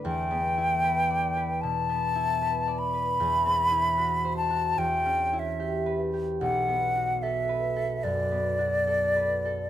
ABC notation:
X:1
M:4/4
L:1/16
Q:1/4=74
K:Em
V:1 name="Flute"
g8 a6 b2- | b6 a2 g3 e3 z2 | f4 e4 d8 |]
V:2 name="Harp"
(3[E,,EBd]2 B,2 E2 (3B2 d2 B2 (3B,,2 B,2 E2 (3B2 d2 B2 | (3E,,2 C2 E2 (3F2 c2 F2 (3E,,2 ^C2 E2 (3G2 B2 G2 | (3B,,,2 B,2 F2 (3A2 B2 A2 (3F,,2 B,2 F2 (3A2 B2 A2 |]